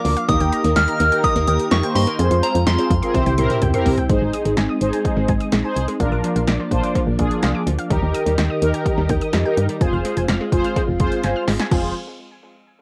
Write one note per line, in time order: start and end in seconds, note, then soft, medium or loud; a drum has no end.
0.00 0.27 F3 medium
0.00 0.15 A#3 medium
0.00 0.27 A#3 medium
0.00 0.15 D4 medium
0.00 0.27 D4 loud
0.00 0.15 F4 medium
0.00 0.15 A#4 medium
0.00 0.30 D6 loud
0.05 0.16 D2 loud
0.05 0.14 A#3 medium
0.05 open hi-hat medium
0.17 0.25 F5 medium
0.17 closed hi-hat medium
0.29 0.39 D#2 loud
0.29 2.17 D#3 medium
0.29 0.37 A#3 medium
0.29 0.65 A#3 medium
0.29 0.65 D#4 medium
0.29 2.17 D#4 medium
0.29 0.65 G4 medium
0.29 2.17 G4 medium
0.29 0.65 A#4 medium
0.29 2.17 A#4 medium
0.29 0.78 D#6 loud
0.29 kick loud
0.29 closed hi-hat medium
0.40 0.51 D#2 medium
0.40 0.49 G5 medium
0.40 closed hi-hat medium
0.52 0.61 A#5 medium
0.52 closed hi-hat medium
0.64 0.75 D#2 loud
0.64 0.73 A#3 medium
0.64 closed hi-hat medium
0.76 0.87 D#2 loud
0.76 1.25 F6 loud
0.76 snare loud
0.76 closed hi-hat medium
0.88 1.03 A#3 medium
0.88 1.03 D#4 medium
0.88 1.03 G4 medium
0.88 1.03 A#4 medium
0.88 0.97 A#5 medium
0.88 closed hi-hat soft
1.00 1.11 D#2 loud
1.00 1.09 A#3 medium
1.00 closed hi-hat medium
1.12 1.34 A#3 medium
1.12 1.34 D#4 medium
1.12 1.34 G4 medium
1.12 1.34 A#4 medium
1.12 1.21 G5 medium
1.12 closed hi-hat medium
1.24 1.33 A#5 medium
1.24 1.46 D#6 loud
1.24 kick loud
1.24 closed hi-hat medium
1.36 1.47 D#2 medium
1.36 1.45 A#3 loud
1.36 closed hi-hat medium
1.47 1.58 D#2 loud
1.47 1.69 A#3 medium
1.47 1.69 D#4 medium
1.47 1.69 G4 medium
1.47 1.69 A#4 medium
1.47 1.56 G5 medium
1.47 1.58 D#6 loud
1.47 closed hi-hat medium
1.59 closed hi-hat soft
1.71 1.82 F2 medium
1.71 1.80 A#3 medium
1.71 1.96 C#6 loud
1.71 snare loud
1.71 closed hi-hat medium
1.83 2.05 A#3 medium
1.83 2.05 D#4 medium
1.83 2.05 G4 medium
1.83 2.05 C5 medium
1.83 1.92 G5 medium
1.83 closed hi-hat medium
1.95 2.06 G2 loud
1.95 2.04 A#5 medium
1.95 2.44 C6 loud
1.95 open hi-hat medium
2.07 2.16 A#3 medium
2.07 closed hi-hat medium
2.19 2.30 F2 loud
2.19 3.13 G#3 medium
2.19 4.08 C4 medium
2.19 2.55 C4 medium
2.19 3.13 F4 medium
2.19 2.55 F4 medium
2.19 2.55 G#4 medium
2.19 2.55 C5 medium
2.19 2.28 G#5 medium
2.19 closed hi-hat medium
2.31 2.42 F2 loud
2.31 2.40 C6 medium
2.31 closed hi-hat medium
2.43 2.52 C4 loud
2.43 2.67 A#5 medium
2.43 closed hi-hat medium
2.55 2.66 F2 loud
2.55 closed hi-hat medium
2.67 2.78 F2 loud
2.67 2.76 C6 medium
2.67 3.82 C6 medium
2.67 snare loud
2.67 closed hi-hat medium
2.78 2.87 C4 loud
2.78 2.93 C4 medium
2.78 2.93 F4 medium
2.78 2.93 G#4 medium
2.78 2.93 C5 medium
2.78 closed hi-hat soft
2.90 3.01 F2 loud
2.90 kick medium
2.90 closed hi-hat medium
3.02 3.13 C4 medium
3.02 3.14 F4 medium
3.02 3.14 G#4 medium
3.02 3.14 A#4 medium
3.02 3.11 C6 medium
3.02 closed hi-hat medium
3.14 3.25 C2 loud
3.14 4.09 C3 medium
3.14 3.23 C4 medium
3.14 3.33 C4 medium
3.14 4.09 E4 medium
3.14 3.33 E4 medium
3.14 4.09 G4 medium
3.14 3.33 G4 medium
3.14 3.33 C5 medium
3.14 kick loud
3.14 closed hi-hat medium
3.14 high tom medium
3.26 3.37 C2 loud
3.26 3.35 G5 medium
3.26 closed hi-hat medium
3.26 high tom medium
3.38 3.49 C2 loud
3.38 3.60 C4 medium
3.38 3.60 E4 medium
3.38 3.60 G4 medium
3.38 3.60 A#4 loud
3.38 3.47 C6 medium
3.38 closed hi-hat medium
3.38 mid tom medium
3.50 3.59 C4 medium
3.50 closed hi-hat medium
3.50 mid tom medium
3.62 3.73 C#2 loud
3.62 3.71 G5 medium
3.62 closed hi-hat medium
3.62 mid tom medium
3.74 3.96 C4 medium
3.74 3.96 E4 medium
3.74 3.96 G4 medium
3.74 3.96 A#4 loud
3.74 3.83 C6 medium
3.74 closed hi-hat medium
3.74 mid tom medium
3.86 3.97 C2 loud
3.86 3.95 C4 medium
3.86 floor tom loud
3.86 open hi-hat medium
3.98 4.06 G5 medium
3.98 closed hi-hat medium
3.98 floor tom loud
4.10 4.20 G#1 loud
4.10 4.18 G#3 medium
4.10 5.98 G#3 medium
4.10 5.98 C4 medium
4.10 4.53 D#4 medium
4.10 5.98 D#4 medium
4.10 4.53 G#4 medium
4.10 4.53 C5 loud
4.10 kick loud
4.10 closed hi-hat medium
4.22 4.32 G#1 medium
4.33 4.42 D#6 medium
4.33 closed hi-hat medium
4.45 4.56 G#1 loud
4.45 4.54 G#3 medium
4.45 closed hi-hat medium
4.57 4.68 G#1 loud
4.57 4.66 G#5 medium
4.57 snare loud
4.57 closed hi-hat medium
4.69 4.78 D#6 medium
4.81 4.92 G#1 loud
4.81 5.32 D#4 medium
4.81 5.32 G#4 medium
4.81 5.32 C5 loud
4.81 closed hi-hat medium
4.93 5.02 G#5 medium
4.93 closed hi-hat medium
5.05 kick loud
5.05 closed hi-hat medium
5.17 5.28 G#1 loud
5.17 5.26 G#3 medium
5.28 5.39 G#1 loud
5.28 5.37 G#5 medium
5.28 kick medium
5.28 closed hi-hat medium
5.40 5.49 D#6 medium
5.40 closed hi-hat soft
5.52 5.63 A#1 medium
5.52 5.61 G#3 medium
5.52 snare loud
5.52 closed hi-hat medium
5.64 5.86 D#4 medium
5.64 5.86 G#4 medium
5.64 5.86 C5 loud
5.64 5.73 G#5 medium
5.76 5.87 C2 medium
5.76 closed hi-hat medium
5.88 5.97 G#3 medium
5.88 closed hi-hat soft
6.00 6.11 A#1 loud
6.00 7.89 F3 medium
6.00 7.89 A#3 medium
6.00 6.44 D4 medium
6.00 7.89 D4 medium
6.00 6.44 F4 medium
6.00 6.44 A#4 loud
6.00 6.09 F5 medium
6.00 kick loud
6.00 closed hi-hat medium
6.12 6.23 A#1 loud
6.12 6.21 D6 medium
6.24 6.33 F3 medium
6.24 closed hi-hat medium
6.36 6.47 A#1 medium
6.36 6.45 F5 medium
6.36 closed hi-hat medium
6.48 6.59 A#1 loud
6.48 6.56 D6 medium
6.48 snare loud
6.48 closed hi-hat medium
6.60 6.68 F3 medium
6.71 6.82 A#1 medium
6.71 7.01 D4 medium
6.71 7.01 F4 medium
6.71 7.01 C5 loud
6.71 kick medium
6.71 closed hi-hat medium
6.83 6.92 D6 medium
6.83 closed hi-hat medium
6.95 7.04 F3 medium
6.95 kick medium
6.95 closed hi-hat medium
7.07 7.18 A#1 loud
7.19 7.30 A#1 loud
7.19 7.63 D4 medium
7.19 7.63 F4 medium
7.19 7.63 G#4 loud
7.19 kick medium
7.19 closed hi-hat medium
7.31 closed hi-hat soft
7.43 7.54 C2 loud
7.43 7.52 F5 medium
7.43 snare loud
7.43 closed hi-hat medium
7.55 7.64 D6 medium
7.67 7.78 D2 loud
7.67 7.76 F3 medium
7.67 closed hi-hat medium
7.79 7.87 F5 medium
7.79 closed hi-hat soft
7.90 8.01 D#2 loud
7.90 9.79 D#3 medium
7.90 7.99 G3 medium
7.90 8.34 D#4 medium
7.90 9.79 D#4 medium
7.90 8.34 G4 medium
7.90 9.79 G4 medium
7.90 8.34 A#4 loud
7.90 9.79 A#4 medium
7.90 kick loud
7.90 closed hi-hat medium
8.02 8.13 D#2 medium
8.14 8.23 D#6 medium
8.14 closed hi-hat medium
8.26 8.37 D#2 medium
8.26 8.35 G3 medium
8.26 closed hi-hat medium
8.38 8.49 D#2 loud
8.38 8.47 G5 medium
8.38 snare loud
8.38 closed hi-hat medium
8.50 8.59 D#6 medium
8.62 8.73 D#2 medium
8.62 9.13 D#4 medium
8.62 9.13 G4 medium
8.62 9.13 A#4 loud
8.62 closed hi-hat medium
8.74 8.83 G5 medium
8.74 closed hi-hat medium
8.86 kick loud
8.86 closed hi-hat medium
8.98 9.09 D#2 medium
8.98 9.07 G3 medium
9.09 9.20 D#2 loud
9.09 9.18 G5 medium
9.09 kick medium
9.09 closed hi-hat medium
9.21 9.30 D#6 medium
9.21 closed hi-hat soft
9.33 9.44 F2 medium
9.33 9.42 G3 medium
9.33 snare loud
9.33 closed hi-hat medium
9.45 9.67 D#4 medium
9.45 9.67 G4 medium
9.45 9.67 A#4 loud
9.45 9.54 G5 medium
9.57 9.68 G2 loud
9.57 closed hi-hat medium
9.69 9.78 G3 medium
9.69 closed hi-hat soft
9.81 9.92 F1 loud
9.81 11.70 G#3 medium
9.81 11.70 C4 medium
9.81 10.25 F4 medium
9.81 11.70 F4 loud
9.81 10.25 G#4 medium
9.81 10.25 C5 loud
9.81 9.90 G#5 medium
9.81 kick loud
9.81 closed hi-hat medium
9.93 10.04 F1 loud
9.93 10.02 F6 medium
10.05 10.14 G#3 medium
10.05 closed hi-hat medium
10.17 10.28 F1 loud
10.17 10.26 G#5 medium
10.17 closed hi-hat medium
10.28 10.39 F1 loud
10.28 10.38 F6 medium
10.28 snare loud
10.28 closed hi-hat medium
10.41 10.49 G#3 medium
10.52 10.63 F1 medium
10.52 10.81 F4 loud
10.52 10.81 G#4 medium
10.52 10.82 C5 loud
10.52 kick medium
10.52 closed hi-hat medium
10.64 10.73 F6 medium
10.64 closed hi-hat medium
10.76 10.85 G#3 medium
10.76 kick medium
10.76 closed hi-hat medium
10.88 10.99 F1 loud
11.00 11.11 F1 loud
11.00 11.44 F4 medium
11.00 11.44 G#4 medium
11.00 11.44 C5 loud
11.00 kick medium
11.00 closed hi-hat medium
11.12 closed hi-hat soft
11.24 11.35 G1 medium
11.24 11.33 G#5 medium
11.24 snare medium
11.24 closed hi-hat medium
11.36 11.45 F6 medium
11.48 11.59 G#1 medium
11.48 11.57 G#3 medium
11.48 snare medium
11.48 open hi-hat medium
11.60 11.68 G#5 medium
11.60 snare loud
11.60 closed hi-hat soft
11.72 11.94 F1 loud
11.72 11.94 F3 medium
11.72 11.94 G#3 medium
11.72 11.94 C4 medium
11.72 11.94 F4 medium
11.72 11.94 G#4 medium
11.72 11.94 C5 medium
11.72 kick loud
11.72 crash medium